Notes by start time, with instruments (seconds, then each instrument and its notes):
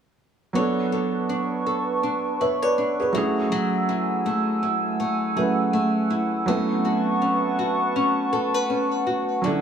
0.53 felt piano F#3 B3 D4 C#5, nylon-string guitar B3 C#5, analog synth pad B4 A5 C#6
0.58 felt piano A4
0.92 nylon-string guitar A4
1.29 nylon-string guitar D4
1.66 nylon-string guitar A4
2.03 nylon-string guitar D4
2.41 nylon-string guitar B4, felt piano C#5 E5
2.62 felt piano B4 D5, nylon-string guitar C#5
2.78 nylon-string guitar D4
3.00 felt piano G#4 B4
3.12 felt piano F#3 A3 C#4, nylon-string guitar F#3, analog synth pad A3 F#5 G#5 E6
3.16 felt piano E4 G#4
3.52 nylon-string guitar F#3 G#4
3.89 nylon-string guitar E4
4.26 nylon-string guitar A3
4.63 nylon-string guitar E4
5.00 nylon-string guitar A3
5.36 felt piano F#3 A3 C#4 E4 B4, nylon-string guitar G#4
5.73 nylon-string guitar A3
6.10 nylon-string guitar E4
6.46 felt piano F#3 B3 C4 E4, nylon-string guitar A3 B4, analog synth pad B4 A5 C#6
6.51 felt piano C#4 A4
6.85 nylon-string guitar F#4
7.22 nylon-string guitar C#4
7.59 nylon-string guitar F#4
7.96 nylon-string guitar C#4
8.33 nylon-string guitar A4
8.54 nylon-string guitar B4
8.70 nylon-string guitar C#4
9.07 nylon-string guitar F#4
9.42 nylon-string guitar D3 E4, felt piano F#3 C#4 D4 E4, analog synth pad E5 D6
9.47 felt piano A4